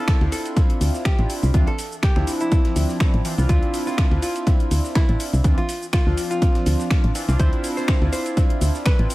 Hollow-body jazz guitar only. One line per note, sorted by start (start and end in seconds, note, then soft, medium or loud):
0.00 0.24 A4 loud
0.32 0.60 A4 medium
1.05 1.34 G4 medium
1.67 1.95 A4 loud
2.03 2.31 G4 loud
2.41 3.40 E4 medium
3.49 3.77 F4 medium
3.87 4.15 F4 medium
4.22 4.51 F4 medium
4.96 5.24 E4 medium
5.58 5.85 F4 loud
5.93 6.21 F4 medium
6.31 7.31 F4 medium
7.39 7.68 C5 medium
7.77 8.05 C5 loud
8.13 8.41 C5 medium
8.86 9.14 B4 medium